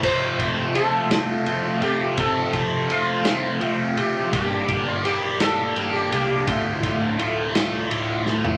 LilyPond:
<<
  \new Staff \with { instrumentName = "Sitar" } { \time 6/8 \key f \major \tempo 4. = 56 c''4 a'4. g'8 | a'4 f'4. g'8 | g'8. f'16 g'8 a'8. g'16 g'8 | f'2 r4 | }
  \new Staff \with { instrumentName = "Overdriven electric guitar" } { \time 6/8 \key f \major <f, c f a c' f'>8 <f a c' f'>8 <f a c' f'>8 <f a c' f'>8 <f a c' f'>8 <f a c' f'>8 | <f, c f a c' f'>8 <f a c' f'>8 <f a c' f'>8 <f a c' f'>8 <f a c' f'>8 <f a c' f'>8 | <g, d g bes d' g'>8 <g bes d' g'>8 <g bes d' g'>8 <g bes d' g'>8 <g bes d' g'>8 <g bes d' g'>8 | <d, a, d a f'>8 <d a f'>8 <a, d a f'>8 <d a f'>8 <a, d a f'>8 <d a f'>8 | }
  \new Staff \with { instrumentName = "Picked electric bass" } { \clef bass \time 6/8 \key f \major f,,8 f,,8 f,,4 f,,8 f,,8 | f,,8 f,,8 f,,4 f,,8 f,,8 | g,,8 g,,8 g,,4 g,,8 c,8 | d,,8 d,,8 d,,4 d,,8 d,,8 | }
  \new DrumStaff \with { instrumentName = "Drums" } \drummode { \time 6/8 <cymc bd>8 <bd cymr>8 cymr8 <cymr sn>8 cymr8 cymr8 | <bd cymr>8 <bd cymr>8 cymr8 <cymr sn>8 cymr8 cymr8 | <bd cymr>8 <bd cymr>8 cymr8 <cymr sn>8 cymr8 cymr8 | <bd cymr>8 <bd cymr>8 cymr8 <cymr sn>8 cymr8 sn16 tomfh16 | }
>>